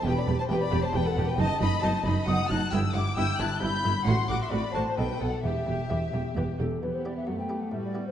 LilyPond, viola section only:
\new Staff \with { instrumentName = "Viola section" } { \time 3/4 \key e \minor \tempo 4 = 134 g'8 g'8 g'8 g'8 g'8 g'8 | dis'8 dis'8 dis'8 dis'8 dis'8 dis'8 | e'8 e'8 e'8 e'8 e'8 e'8 | fis'8 fis'8 fis'8 fis'8 a'8 a'8 |
g'8 g'8 g'8 g'8 g'8 g'8 | b4 a4 g4 | }